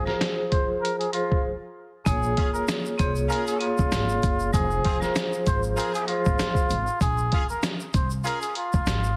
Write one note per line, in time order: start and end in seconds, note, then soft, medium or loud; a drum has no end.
0.06 1.05 F3 loud
0.06 1.05 F4 medium
0.06 1.06 G#4 medium
0.06 0.19 A#4 medium
0.06 1.06 C5 loud
0.06 snare soft
0.21 snare loud
0.21 snare medium
0.21 closed hi-hat medium
0.52 0.67 C5 medium
0.52 kick medium
0.52 closed hi-hat medium
0.82 0.98 A#4 medium
0.82 closed hi-hat medium
0.99 1.12 G#4 medium
0.99 closed hi-hat medium
1.12 1.44 F3 medium
1.12 1.42 F4 medium
1.12 1.44 F4 medium
1.12 1.45 G#4 medium
1.12 1.45 C5 loud
1.12 closed hi-hat medium
1.32 kick medium
2.05 2.32 A#1 loud
2.05 2.92 A#3 medium
2.05 2.92 F4 medium
2.05 2.52 G#4 loud
2.05 2.93 G#4 medium
2.05 2.93 C#5 loud
2.05 kick loud
2.05 closed hi-hat loud
2.05 shaker medium
2.23 shaker medium
2.37 2.48 C#4 loud
2.37 2.48 F4 loud
2.37 2.48 G#4 loud
2.37 kick loud
2.37 closed hi-hat medium
2.54 2.66 A#4 medium
2.54 shaker medium
2.68 snare loud
2.68 snare medium
2.68 closed hi-hat loud
2.68 shaker medium
2.86 shaker soft
2.98 3.25 C2 medium
2.98 3.56 A#3 medium
2.98 3.56 F4 medium
2.98 3.57 G#4 medium
2.98 3.14 C5 medium
2.98 3.57 C#5 loud
2.98 kick medium
2.98 closed hi-hat medium
2.98 shaker soft
3.16 shaker medium
3.28 3.70 C#4 medium
3.28 3.70 F4 loud
3.28 3.70 G#4 loud
3.28 3.45 A#4 loud
3.28 shaker medium
3.32 closed hi-hat medium
3.47 3.59 G#4 medium
3.47 closed hi-hat medium
3.47 shaker medium
3.59 4.46 A#3 loud
3.59 4.47 F4 medium
3.59 4.49 F4 medium
3.59 4.47 G#4 medium
3.59 4.47 C#5 loud
3.59 closed hi-hat medium
3.78 3.90 C#2 loud
3.78 kick medium
3.78 shaker soft
3.92 4.18 G#1 loud
3.92 snare loud
3.92 snare medium
3.92 closed hi-hat loud
3.92 shaker medium
4.09 shaker soft
4.23 4.49 F#1 medium
4.23 kick medium
4.23 closed hi-hat medium
4.23 shaker medium
4.40 shaker soft
4.53 4.80 F1 loud
4.53 4.97 F3 medium
4.53 4.97 F4 medium
4.53 4.99 G#4 loud
4.53 4.98 G#4 medium
4.53 4.98 C5 loud
4.53 kick loud
4.53 closed hi-hat loud
4.53 shaker medium
4.71 shaker medium
4.84 5.00 F1 medium
4.84 4.96 C4 loud
4.84 4.96 F4 loud
4.84 4.96 G#4 loud
4.84 kick loud
4.84 closed hi-hat medium
5.00 6.00 F3 loud
5.00 6.00 F4 medium
5.00 6.01 G#4 medium
5.00 5.14 A#4 medium
5.00 6.01 C5 loud
5.00 snare soft
5.00 shaker medium
5.15 snare loud
5.15 snare medium
5.15 closed hi-hat loud
5.15 shaker medium
5.33 shaker soft
5.46 5.73 G#1 medium
5.46 5.62 C5 medium
5.46 kick medium
5.46 closed hi-hat medium
5.46 shaker medium
5.63 shaker medium
5.76 6.17 C4 loud
5.76 6.17 F4 loud
5.76 6.17 G#4 loud
5.76 5.92 A#4 medium
5.76 closed hi-hat medium
5.76 shaker medium
5.95 6.07 G#4 medium
5.95 closed hi-hat medium
5.95 shaker medium
6.07 6.65 F3 medium
6.07 6.97 F4 medium
6.07 6.66 F4 medium
6.07 6.66 G#4 medium
6.07 6.67 C5 loud
6.07 closed hi-hat medium
6.25 6.38 G#1 medium
6.25 kick medium
6.25 shaker medium
6.39 snare loud
6.39 closed hi-hat loud
6.39 shaker medium
6.55 kick loud
6.55 shaker soft
6.70 6.85 G#1 medium
6.70 closed hi-hat medium
6.70 shaker medium
6.87 shaker medium
7.01 7.27 A#1 loud
7.01 7.47 G#4 loud
7.01 kick loud
7.01 closed hi-hat loud
7.01 shaker medium
7.18 shaker soft
7.32 7.44 C#4 loud
7.32 7.44 F4 loud
7.32 7.44 G#4 loud
7.32 kick loud
7.32 closed hi-hat medium
7.50 7.62 A#4 medium
7.50 shaker medium
7.63 snare loud
7.63 snare medium
7.63 closed hi-hat loud
7.63 shaker medium
7.80 shaker soft
7.94 8.20 C2 medium
7.94 8.10 C5 medium
7.94 kick medium
7.94 closed hi-hat medium
7.94 shaker medium
8.10 shaker medium
8.24 8.44 C#4 loud
8.24 8.44 F4 medium
8.24 8.44 G#4 loud
8.24 8.41 A#4 medium
8.24 closed hi-hat medium
8.24 shaker medium
8.42 8.54 G#4 medium
8.42 closed hi-hat medium
8.42 shaker medium
8.55 9.17 F4 medium
8.55 closed hi-hat medium
8.73 8.85 C#2 loud
8.73 kick medium
8.73 shaker soft
8.87 9.13 G#1 loud
8.87 snare loud
8.87 closed hi-hat loud
8.87 shaker medium
9.04 shaker soft